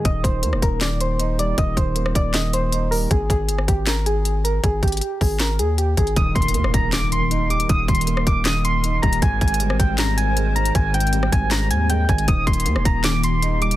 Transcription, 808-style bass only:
\new Staff \with { instrumentName = "808-style bass" } { \clef bass \time 4/4 \key ees \major \tempo 4 = 157 ees,,8 ees,,8 ees,16 ees,,16 ees,,2~ ees,,8 | ees,,8 ees,,4 ees,,2~ ees,,8 | aes,,8 aes,,8 g,,16 aes,,16 aes,,2~ aes,,8 | aes,,8 aes,,8 r8 aes,,4 ees,4 aes,,8 |
ees,,8 ees,,8 ees,16 ees,,16 ees,,2~ ees,,8 | ees,,8 ees,,4 ees,,2 ees,,8 | aes,,8 aes,,8 g,,16 aes,,16 aes,,2~ aes,,8 | aes,,4. aes,,4 ees,4 aes,,8 |
ees,,8 ees,,8 ees,16 ees,,16 ees,,2~ ees,,8 | }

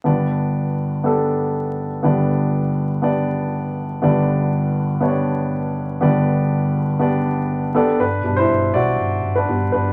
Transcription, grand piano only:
<<
  \new Staff \with { instrumentName = "Grand piano" } { \time 4/4 \key g \major \tempo 4 = 121 <b d' g' d''>4. r8 <b d' g' a'>4. r8 | <b d' g' d''>4. r8 <b d' g' d''>4. r8 | <b d' g' d''>4. r8 <b d' g' cis'' d''>4. r8 | <b d' g' d''>4. r8 <b d' g' d''>4. <b d' g' a' d''>8 |
<d' b'>8. <e' c''>8. <fis' d''>4~ <fis' d''>16 <d' b'>8. <d' b'>8 | }
  \new Staff \with { instrumentName = "Grand piano" } { \clef bass \time 4/4 \key g \major <g,, g,>1 | <g,, g,>1 | <g,, g,>1 | <g,, g,>2.~ <g,, g,>8 r8 |
r8 <b, g d'>2~ <b, g d'>8 <g b d'>8 r8 | }
>>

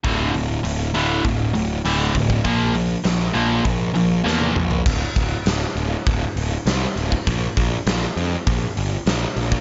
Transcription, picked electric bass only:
\new Staff \with { instrumentName = "Picked electric bass" } { \clef bass \time 4/4 \key d \minor \tempo 4 = 100 d,,8 d,,8 d,,8 d,,8 d,,8 d,,8 d,,8 d,,8 | bes,,4 bes,,8 bes,,8 bes,,8 bes,,8 e,8 bes,,8 | d,,8 d,,8 d,,8 d,,8 d,,8 d,,8 c,8 d,,8 | bes,,8 bes,,8 bes,,8 f,8 bes,,8 g,,8 bes,,8 bes,,8 | }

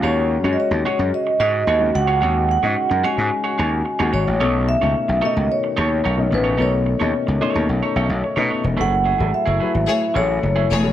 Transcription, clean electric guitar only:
\new Staff \with { instrumentName = "Clean electric guitar" } { \time 4/4 \key b \mixolydian \tempo 4 = 110 <fis' gis' cis''>8 r16 <fis' gis' cis''>16 r8 <fis' gis' cis''>16 r8. <fis' gis' cis''>16 r16 <fis' gis' cis''>16 r8 <fis' gis' cis''>16 | <fis' gis' cis''>16 r8 <fis' gis' cis''>16 r8 <fis' gis' cis''>16 <fis' gis' cis''>16 r16 <fis' gis' cis''>16 <fis' gis' cis''>16 r8 <fis' gis' cis''>16 <fis' gis' cis''>16 r16 | <dis' a' cis''>8 r16 <dis' a' cis''>16 r8 <dis' a' cis''>16 r8. <dis' a' cis''>16 r16 <dis' a' cis''>16 r8 <dis' a' cis''>16 | <dis' a' cis''>16 r8 <dis' a' cis''>16 r8 <dis' a' cis''>16 <dis' a' cis''>16 r16 <dis' a' cis''>16 <dis' a' cis''>16 r8 <dis' a' cis''>16 <dis' a' cis''>16 r16 |
<a e' gis'>16 r16 <a e' gis'>16 <a e' gis'>16 r16 <a e' gis'>16 <a e' gis'>16 r8. <a e' gis'>16 r8 <a e' gis'>16 r8 | }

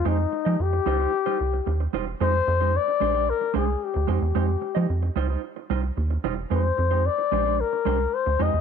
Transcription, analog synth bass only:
\new Staff \with { instrumentName = "Analog synth bass" } { \clef bass \time 4/4 \key f \minor \tempo 4 = 112 f,8 r16 f16 f,8 des,8 r8 c,8 ees,8 e,,8 | f,8 f,8. r16 bes,,8. r16 c,8 r16 d,16 f,16 e,16 | f,8 r16 f16 f,8 des,8 r8 c,8 ees,8 e,,8 | f,8 f,8. r16 bes,,8. r16 c,8 r16 d,16 f,16 e,16 | }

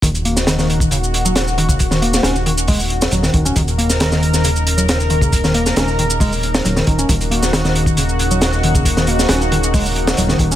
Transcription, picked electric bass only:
\new Staff \with { instrumentName = "Picked electric bass" } { \clef bass \time 4/4 \key ees \minor \tempo 4 = 136 ees16 r16 bes16 r16 ees16 ees8. des16 r8 ges16 r8 ees16 des16 | r16 ees16 bes8 des'16 r16 ees16 r16 aes16 r8. ges16 ees16 ees16 des'16 | ees16 r16 bes16 r16 ees16 ees8. des16 r8 ges16 r8 ees16 des16 | r16 ees16 bes8 des'16 r16 ees16 r16 aes16 r8. ges16 ees16 ees16 des'16 |
ees16 r16 bes16 r16 ees16 ees8. des16 r8 ges16 r8 ees16 des16 | r16 ees16 bes8 des'16 r16 ees16 r16 aes16 r8. ges16 ees16 ees16 des'16 | }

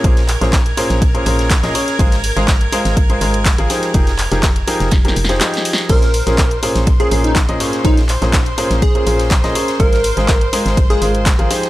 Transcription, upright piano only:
\new Staff \with { instrumentName = "Upright piano" } { \time 4/4 \key bes \dorian \tempo 4 = 123 <bes, des' aes' bes' c''>16 r8 <bes, des' aes' bes' c''>16 r8 <bes, des' aes' bes' c''>8 r16 <bes, des' aes' bes' c''>16 <bes, des' aes' bes' c''>8 r16 <bes, des' aes' bes' ees''>16 <des' aes' bes' des''>8 | <aes f' aes' bes' c''>16 r8 <aes f' aes' bes' c''>16 r8 <aes f' aes' bes' c''>8 r16 <aes f' aes' bes' c''>16 <aes f' aes' bes' c''>8 r16 <f f' aes' bes' f''>16 <f ees' g' aes' c''>8 | <f ees' g' aes' bes'>16 r8 <f ees' g' aes' bes'>16 r8 <f ees' g' aes' bes'>8 r16 <f ees' g' aes' bes'>16 r16 <f ees' g' aes' c''>16 <f ees' g' aes' ees''>4 | <bes, des' aes' bes' c''>16 r8 <bes, des' aes' bes' c''>16 r8 <bes, des' aes' bes' c''>8 r16 <bes, des' aes' bes' c''>16 <bes, des' aes' bes' c''>8 r16 <bes, des' aes' bes' ees''>16 <bes, des' aes' bes' des''>8 |
<bes, des' aes' bes' c''>16 r8 <bes, des' aes' bes' c''>16 r8 <bes, des' aes' bes' c''>8 r16 <bes, des' aes' bes' c''>16 <bes, des' aes' bes' c''>8 r16 <bes, des' aes' bes' ees''>16 <des' aes' bes' des''>8 | <aes f' aes' bes' c''>16 r8 <aes f' aes' bes' c''>16 r8 <aes f' aes' bes' c''>8 r16 <aes f' aes' bes' c''>16 <aes f' aes' bes' c''>8 r16 <f f' aes' bes' f''>16 <f ees' g' aes' c''>8 | }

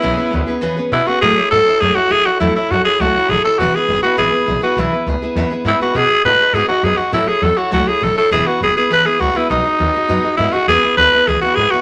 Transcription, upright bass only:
\new Staff \with { instrumentName = "Upright bass" } { \clef bass \time 4/4 \key e \major \tempo 4 = 203 b,,8 r8 d,8 r8 e,8 r8 b,8 r8 | a,8 r8 gis,8 r8 fis,8 r8 a,8 r8 | e,8 r8 fis,8 r8 cis,8 r8 a,,8 r8 | e,,8 r8 fis,,8 r8 gis,,8 r8 ais,,8 r8 |
b,,8 r8 cis,8 r8 e,8 r8 gis,8 r8 | b,8 r8 a,8 r8 gis,8 r8 fis,8 r8 | a,8 r8 e,8 r8 cis,8 r8 a,,8 r8 | e,,8 r8 fis,,8 r8 gis,,8 r8 cis,8 r8 |
b,,8 r8 dis,8 r8 fis,8 r8 gis,8 r8 | e,8 r8 d,8 r8 cis,8 r8 gis,8 r8 | }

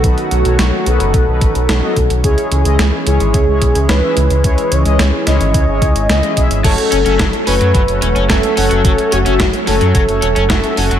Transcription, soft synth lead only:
\new Staff \with { instrumentName = "Soft synth lead" } { \time 4/4 \key cis \minor \tempo 4 = 109 a'8 fis'4 a'2~ a'8 | gis'4. gis'4. b'4~ | b'8 cis''8 r8 dis''2~ dis''8 | \key fis \minor a'4. b'4. a'4~ |
a'8 fis'8 r8 a'2~ a'8 | }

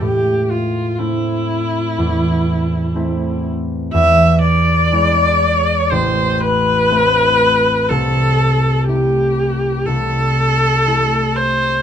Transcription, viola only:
\new Staff \with { instrumentName = "Viola" } { \time 4/4 \key a \minor \tempo 4 = 61 g'8 f'8 e'2~ e'8 r8 | e''8 d''4. c''8 b'4. | a'4 g'4 a'4. c''8 | }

